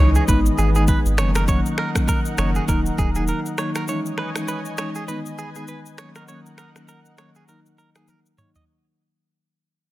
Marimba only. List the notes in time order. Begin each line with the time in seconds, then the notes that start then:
0.00 E3 G#3 C#4 D#4
0.28 D#3 G#3 B3 D#4
0.75 D#3 G#3 B3 D#4
1.18 D#3 F#3 A#3 C#4
1.48 D#3 F#3 A#3 C#4
1.96 D#3 F#3 A#3 C#4
2.38 D#3 F#3 A#3 C#4
2.68 D#3 F#3 A#3 D#4
3.16 D#3 F#3 A#3 D#4
3.58 D#3 F#3 A#3 D#4
3.88 E3 G#3 C#4 D#4
4.35 E3 G#3 C#4 D#4
4.78 E3 G#3 C#4 D#4
5.08 D#3 G#3 B3 D#4
5.55 D#3 G#3 B3 D#4
5.98 D#3 F#3 A#3 C#4
6.28 D#3 F#3 A#3 C#4
6.75 D#3 F#3 A#3 C#4
7.18 D#3 F#3 A#3 C#4
7.48 D#3 F#3 A#3 D#4
7.95 D#3 F#3 A#3 D#4
8.38 D#3 F#3 A#3 D#4